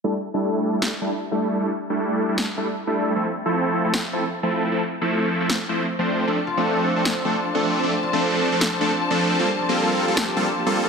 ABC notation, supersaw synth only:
X:1
M:4/4
L:1/16
Q:"Swing 16ths" 1/4=154
K:Aphr
V:1 name="Supersaw synth"
[G,A,DEA] z2 [G,A,DEA]4 [G,A,DEA]2 z [G,A,DEA] z2 [G,A,DEA]3 | [G,A,DEA] z2 [G,A,DEA]4 [G,A,DEA]2 z [G,A,DEA] z2 [G,A,DEA]3 | [F,A,CEA] z2 [F,A,CEA]4 [F,A,CEA]2 z [F,A,CEA] z2 [F,A,CEA]3 | [F,A,CEA] z2 [F,A,CEA]4 [F,A,CEA]2 z [F,A,CEc]2 z [F,A,CDc]3 |
[F,A,CDA] z2 [F,A,CDA]4 [F,A,CDA]2 z [F,A,CDA] z2 [F,A,CDA]3 | [F,A,CDA] z2 [F,A,CDA]4 [F,A,CDA]2 z [F,A,CDA] z2 [F,A,CDA]3 | [G,B,CFA] z2 [G,B,CFA]4 [G,B,CFA]2 z [G,B,CFA] z2 [G,B,CFA]3 |]